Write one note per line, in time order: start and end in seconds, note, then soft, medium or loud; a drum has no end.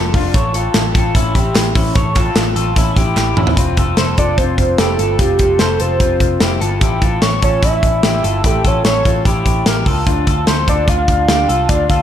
0.00 0.10 F1 loud
0.00 0.12 F4 medium
0.00 0.11 A4 loud
0.00 0.12 A4 medium
0.00 0.11 A5 medium
0.14 0.31 F1 medium
0.14 0.35 D4 medium
0.14 0.34 F4 medium
0.14 kick loud
0.14 open hi-hat medium
0.34 0.67 A1 loud
0.34 0.53 A4 medium
0.34 0.54 C#5 loud
0.34 kick loud
0.34 closed hi-hat loud
0.54 0.93 F4 medium
0.54 0.92 A4 medium
0.54 closed hi-hat medium
0.74 0.91 A1 loud
0.74 snare loud
0.74 clap medium
0.74 closed hi-hat medium
0.94 1.11 A1 medium
0.94 1.15 F4 medium
0.94 1.15 A4 medium
0.94 kick medium
0.94 closed hi-hat medium
1.15 1.32 A1 loud
1.15 1.35 C#4 medium
1.15 1.34 E4 medium
1.15 kick loud
1.15 closed hi-hat medium
1.35 1.52 A1 loud
1.35 1.73 E4 medium
1.35 1.73 G4 medium
1.35 kick medium
1.35 closed hi-hat medium
1.55 1.72 A1 loud
1.55 snare loud
1.55 clap medium
1.55 closed hi-hat loud
1.75 1.92 A1 medium
1.75 1.96 C#4 medium
1.75 1.95 E4 medium
1.75 kick medium
1.75 open hi-hat medium
1.95 2.29 A1 loud
1.95 2.14 A4 medium
1.95 2.16 C#5 loud
1.95 kick loud
1.95 closed hi-hat loud
2.15 2.54 F4 medium
2.15 2.53 A4 medium
2.15 kick medium
2.15 clap medium
2.15 closed hi-hat medium
2.35 2.52 A1 loud
2.35 snare loud
2.35 clap medium
2.35 closed hi-hat medium
2.56 2.73 A1 medium
2.56 2.77 F4 medium
2.56 2.76 A4 medium
2.56 closed hi-hat medium
2.76 2.93 A1 loud
2.76 2.97 C#4 medium
2.76 2.97 E4 medium
2.76 kick loud
2.76 closed hi-hat medium
2.96 3.13 A1 medium
2.96 3.35 E4 medium
2.96 3.35 G4 medium
2.96 kick medium
2.96 closed hi-hat medium
3.16 3.33 A1 loud
3.16 snare medium
3.16 clap medium
3.37 3.54 A1 loud
3.37 3.58 C#4 medium
3.37 3.57 E4 medium
3.37 mid tom medium
3.47 floor tom medium
3.57 3.74 F1 loud
3.57 3.78 C4 medium
3.57 3.77 F4 medium
3.57 kick loud
3.57 closed hi-hat medium
3.77 3.94 F1 medium
3.77 3.98 F4 medium
3.77 3.98 A4 medium
3.77 kick medium
3.77 closed hi-hat medium
3.97 4.14 F1 medium
3.97 4.17 A4 medium
3.97 4.18 C5 medium
3.97 snare medium
3.97 closed hi-hat medium
4.18 4.35 F1 medium
4.18 4.37 F4 soft
4.18 4.38 A4 medium
4.18 4.39 D5 loud
4.18 kick medium
4.18 closed hi-hat medium
4.38 4.55 F1 medium
4.38 4.77 C4 medium
4.38 4.77 F4 medium
4.38 4.79 C5 loud
4.38 kick medium
4.38 closed hi-hat medium
4.58 4.75 F1 medium
4.58 kick medium
4.58 closed hi-hat medium
4.78 4.95 F1 medium
4.78 5.00 E4 medium
4.78 4.99 G4 medium
4.78 5.17 A4 medium
4.78 snare loud
4.78 closed hi-hat medium
4.99 5.16 G1 medium
4.99 5.18 F4 medium
4.99 5.19 A4 medium
4.99 closed hi-hat medium
5.19 5.36 F1 loud
5.19 5.40 C4 medium
5.19 5.39 F4 medium
5.19 5.62 G4 loud
5.19 kick loud
5.19 closed hi-hat medium
5.39 5.56 F1 medium
5.39 5.60 F4 medium
5.39 5.59 A4 medium
5.39 kick medium
5.39 closed hi-hat medium
5.59 5.77 F1 medium
5.59 5.82 A4 loud
5.59 5.78 A4 medium
5.59 5.80 C5 medium
5.59 snare medium
5.59 closed hi-hat medium
5.80 5.97 F1 medium
5.80 5.99 F4 soft
5.80 6.00 A4 medium
5.80 6.62 C5 loud
5.80 closed hi-hat medium
6.00 6.17 F1 loud
6.00 6.39 C4 medium
6.00 6.38 F4 medium
6.00 kick medium
6.00 closed hi-hat medium
6.20 6.37 F1 medium
6.20 kick medium
6.20 closed hi-hat medium
6.40 6.58 F1 loud
6.40 6.61 E4 soft
6.40 6.60 G4 medium
6.40 snare loud
6.40 closed hi-hat medium
6.61 6.78 G1 medium
6.61 6.82 F4 medium
6.61 6.81 A4 medium
6.61 closed hi-hat medium
6.81 6.98 A1 loud
6.81 7.02 E4 medium
6.81 7.01 G4 medium
6.81 kick loud
6.81 closed hi-hat medium
7.02 7.19 A1 medium
7.02 7.23 F4 medium
7.02 7.21 A4 medium
7.02 kick medium
7.02 closed hi-hat medium
7.22 7.39 A1 loud
7.22 7.41 A4 medium
7.22 7.42 C#5 medium
7.22 snare medium
7.22 closed hi-hat medium
7.42 7.59 A1 medium
7.42 7.63 F4 medium
7.42 7.63 A4 medium
7.42 7.65 C#5 loud
7.42 kick medium
7.42 closed hi-hat medium
7.62 7.79 A1 medium
7.62 8.01 C#4 medium
7.62 8.01 E4 medium
7.62 8.47 E5 loud
7.62 kick medium
7.62 closed hi-hat medium
7.83 8.00 A1 medium
7.83 kick medium
7.83 closed hi-hat medium
8.03 8.20 A1 medium
8.03 8.24 E4 medium
8.03 8.24 G4 medium
8.03 snare loud
8.03 closed hi-hat medium
8.24 8.41 G1 medium
8.24 8.44 F4 medium
8.24 8.44 A4 medium
8.24 closed hi-hat medium
8.44 8.61 A1 medium
8.44 8.64 E4 medium
8.44 8.64 G4 medium
8.44 8.69 A4 medium
8.44 kick loud
8.44 closed hi-hat medium
8.64 8.81 A1 medium
8.64 8.85 F4 medium
8.64 8.84 A4 medium
8.64 8.86 C#5 medium
8.64 kick medium
8.64 closed hi-hat medium
8.85 9.01 A1 medium
8.85 9.04 A4 medium
8.85 9.05 C#5 medium
8.85 9.24 C#5 medium
8.85 snare medium
8.85 closed hi-hat medium
9.05 9.22 A1 medium
9.05 9.26 F4 medium
9.05 9.25 A4 medium
9.05 kick medium
9.05 closed hi-hat medium
9.25 9.42 A1 medium
9.25 9.64 E4 medium
9.25 9.64 G4 medium
9.25 kick medium
9.25 closed hi-hat medium
9.45 9.62 A1 medium
9.45 kick medium
9.45 closed hi-hat medium
9.66 9.83 A1 loud
9.66 9.87 G4 medium
9.66 9.86 A#4 medium
9.66 snare loud
9.66 closed hi-hat medium
9.86 10.03 C#2 medium
9.86 10.05 F4 soft
9.86 10.07 A4 medium
9.86 kick medium
9.86 open hi-hat medium
10.07 10.23 D2 medium
10.07 10.27 D4 medium
10.07 10.26 F4 medium
10.07 kick loud
10.07 closed hi-hat medium
10.27 10.44 D2 medium
10.27 10.48 F4 medium
10.27 10.47 A4 medium
10.27 kick medium
10.27 closed hi-hat medium
10.47 10.64 D2 medium
10.47 10.66 A4 medium
10.47 10.68 C5 medium
10.47 snare medium
10.47 closed hi-hat medium
10.67 10.84 D2 medium
10.67 10.86 F4 medium
10.67 10.87 A4 medium
10.67 10.91 D5 medium
10.67 kick medium
10.67 closed hi-hat medium
10.88 11.05 D2 loud
10.88 11.26 D4 medium
10.88 11.26 F4 medium
10.88 11.70 F5 loud
10.88 kick medium
10.88 closed hi-hat medium
11.08 11.25 D2 medium
11.08 kick medium
11.08 closed hi-hat medium
11.29 11.45 D2 loud
11.29 11.49 D4 soft
11.29 11.49 G4 medium
11.29 snare loud
11.29 closed hi-hat medium
11.49 11.65 C2 medium
11.49 11.68 F4 medium
11.49 11.69 A4 medium
11.49 closed hi-hat medium
11.69 11.86 D2 loud
11.69 11.90 D4 medium
11.69 11.89 F4 medium
11.69 11.89 D5 loud
11.69 kick loud
11.69 closed hi-hat medium
11.89 12.02 D2 medium
11.89 12.02 F4 medium
11.89 12.02 A4 medium
11.89 12.02 F5 medium
11.89 kick medium
11.89 closed hi-hat medium